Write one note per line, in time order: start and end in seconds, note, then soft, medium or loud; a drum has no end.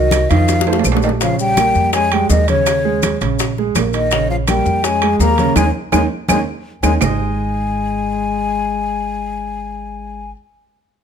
0.00 0.25 C2 medium
0.00 0.31 D#3 medium
0.00 0.24 F#3 medium
0.00 0.24 F#4 medium
0.00 0.24 A#4 medium
0.00 0.31 D#5 medium
0.11 high bongo medium
0.11 high conga loud
0.11 high timbale medium
0.11 low timbale medium
0.11 claves medium
0.11 maracas medium
0.29 0.81 F2 medium
0.29 0.61 D#3 medium
0.29 0.84 F3 medium
0.29 0.61 D#4 medium
0.29 0.61 D#5 medium
0.29 0.85 F5 medium
0.29 high bongo soft
0.29 high conga soft
0.29 high timbale medium
0.29 maracas soft
0.48 high bongo medium
0.48 high conga soft
0.48 high timbale medium
0.48 maracas medium
0.61 high bongo loud
0.66 0.82 A3 medium
0.66 0.82 A4 medium
0.66 0.83 C5 medium
0.66 high conga soft
0.66 high timbale medium
0.73 high bongo medium
0.79 low timbale medium
0.84 1.70 A#1 medium
0.84 1.15 A3 medium
0.84 1.16 A4 medium
0.84 1.16 C5 medium
0.84 high conga medium
0.84 claves medium
0.84 maracas medium
0.92 low timbale loud
0.97 low bongo loud
1.02 1.11 D#3 medium
1.02 1.09 D#5 medium
1.02 low timbale medium
1.02 maracas soft
1.09 low bongo medium
1.21 1.52 C#3 medium
1.21 1.39 F3 medium
1.21 1.52 C#4 medium
1.21 1.39 F5 medium
1.21 high bongo medium
1.21 high conga soft
1.21 high timbale medium
1.21 maracas medium
1.39 1.90 G3 medium
1.39 1.90 G5 loud
1.39 high conga soft
1.39 maracas medium
1.57 1.88 A#3 medium
1.57 1.88 A#4 medium
1.57 high bongo medium
1.57 high conga loud
1.57 high timbale medium
1.57 low timbale medium
1.57 claves medium
1.57 maracas medium
1.75 2.26 F2 medium
1.75 high bongo soft
1.75 high conga soft
1.75 maracas soft
1.93 2.14 G#3 medium
1.93 2.09 C#4 medium
1.93 2.09 C#5 medium
1.93 2.14 G#5 loud
1.93 high bongo medium
1.93 high conga soft
1.93 high timbale medium
1.93 maracas medium
2.11 2.30 G3 medium
2.11 2.42 G#3 medium
2.11 2.42 G#4 medium
2.11 2.30 G5 medium
2.11 high bongo soft
2.11 high conga soft
2.11 high timbale medium
2.11 claves medium
2.29 3.15 D#2 medium
2.29 2.48 D#3 medium
2.29 2.47 D#5 medium
2.29 high bongo soft
2.29 low bongo medium
2.29 high conga medium
2.29 low timbale medium
2.29 maracas medium
2.48 3.17 C#3 medium
2.48 2.79 C#3 medium
2.48 2.79 C#4 medium
2.48 3.18 C#5 medium
2.48 high bongo soft
2.48 high conga medium
2.48 high timbale medium
2.48 maracas soft
2.66 high bongo medium
2.66 high conga soft
2.66 high timbale medium
2.66 claves medium
2.66 maracas medium
2.85 3.14 G#3 medium
2.85 3.15 G#4 medium
2.85 high conga soft
3.02 high bongo medium
3.02 high conga loud
3.02 high timbale medium
3.02 low timbale medium
3.02 claves medium
3.02 maracas medium
3.21 3.72 A#1 medium
3.21 3.51 C#3 medium
3.21 3.51 C#4 medium
3.21 high bongo soft
3.21 high conga soft
3.21 high timbale medium
3.21 maracas soft
3.39 high bongo medium
3.39 high conga soft
3.39 high timbale medium
3.39 maracas medium
3.57 3.73 G#3 medium
3.57 3.73 G#4 medium
3.57 high bongo soft
3.57 high conga soft
3.75 4.60 A#1 medium
3.75 4.06 A#3 medium
3.75 4.06 A#4 medium
3.75 high bongo soft
3.75 low bongo medium
3.75 high conga medium
3.75 high timbale medium
3.75 low timbale medium
3.75 claves medium
3.75 maracas medium
3.93 4.27 D#3 medium
3.93 4.28 D#5 medium
3.93 high bongo soft
3.93 high timbale medium
3.93 maracas soft
4.11 4.42 C#3 medium
4.11 4.42 C#4 medium
4.11 high bongo medium
4.11 high conga soft
4.11 high timbale medium
4.11 maracas medium
4.30 4.38 F3 medium
4.30 4.36 F5 medium
4.30 high conga soft
4.48 4.86 G3 medium
4.48 4.78 A#3 medium
4.48 4.78 A#4 medium
4.48 4.86 G5 medium
4.48 high bongo medium
4.48 high conga medium
4.48 high timbale medium
4.48 low timbale medium
4.48 claves medium
4.48 maracas medium
4.66 5.16 F2 medium
4.66 high bongo soft
4.66 high conga soft
4.66 maracas soft
4.84 5.21 G#3 medium
4.84 4.99 C#4 medium
4.84 4.99 C#5 medium
4.84 5.19 G#5 loud
4.84 high bongo medium
4.84 high conga soft
4.84 high timbale medium
4.84 maracas medium
5.02 5.32 G#3 medium
5.02 5.33 G#4 medium
5.02 high bongo soft
5.02 high conga soft
5.02 high timbale medium
5.02 claves medium
5.20 5.54 D#2 medium
5.20 5.55 A#3 medium
5.20 5.54 A#5 medium
5.20 high bongo soft
5.20 low bongo medium
5.20 high conga medium
5.20 low timbale medium
5.20 maracas medium
5.38 5.54 C#3 medium
5.38 5.54 C#4 medium
5.38 high bongo soft
5.38 high conga medium
5.38 high timbale medium
5.38 maracas soft
5.56 5.70 D#2 medium
5.56 5.66 G#3 medium
5.56 5.68 A#3 medium
5.56 5.68 C#4 medium
5.56 5.68 D#4 medium
5.56 5.68 G#5 medium
5.56 low bongo loud
5.56 high conga loud
5.56 high timbale medium
5.56 claves medium
5.56 maracas medium
5.92 6.06 D#2 medium
5.92 6.02 G#3 medium
5.92 6.05 A#3 loud
5.92 6.04 C#4 medium
5.92 6.04 D#4 medium
5.92 6.04 G#5 medium
5.92 low bongo medium
5.92 high conga loud
5.92 high timbale medium
5.92 claves loud
5.92 maracas medium
6.28 6.43 D#2 medium
6.28 6.38 G#3 medium
6.28 6.41 A#3 medium
6.28 6.41 C#4 medium
6.28 6.41 D#4 medium
6.28 6.40 G#5 medium
6.28 low bongo medium
6.28 high conga loud
6.28 high timbale medium
6.28 claves loud
6.28 maracas loud
6.83 6.97 D#2 medium
6.83 6.92 G#3 medium
6.83 6.95 A#3 medium
6.83 6.95 C#4 medium
6.83 6.95 D#4 medium
6.83 6.95 G#5 medium
6.83 low bongo loud
6.83 high conga medium
6.83 high timbale medium
6.83 claves loud
6.83 maracas medium
7.01 10.30 G#1 medium
7.01 10.30 G#3 medium
7.01 10.31 G#3 medium
7.01 10.31 D#4 medium
7.01 10.31 G#4 medium
7.01 10.32 C5 medium
7.01 10.31 D#5 loud
7.01 10.31 G#5 medium
7.01 low bongo medium
7.01 low conga loud
7.01 low timbale loud
7.01 claves loud
7.01 maracas medium